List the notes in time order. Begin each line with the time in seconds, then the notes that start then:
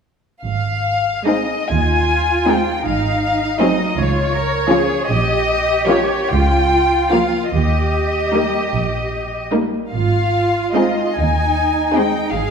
0.42 G#1 F5
1.27 G#3 C4 D#4 G#4 D#5
1.68 D#2 F4 G#5
2.48 G#3 C4 D#4 G#4 G5
2.85 G#1 D#4 F5
3.58 F#3 C4 D#4 G#4 D#5
3.97 C#2 F4 C#5
4.33 A#4
4.69 F3 C#4 F4 G#4
5.08 A#1 G4 D#5
5.88 F3 C#4 F4 A#4 C#5
6.30 C#2 F4 G5
7.11 F3 A#3 F4 A#4 F5
7.50 D#2 G4 D#5
8.33 G3 A#3 D#4 A#4
8.74 A#1
9.52 G3 A#3 D#4 A#4
9.92 G#1 F4 F5
10.75 G#3 C4 D#4 G#4 D#5
11.17 D#2 D#4 G#5
11.94 G#3 C4 D#4 G#4 G5
12.30 G#1 G#4 F5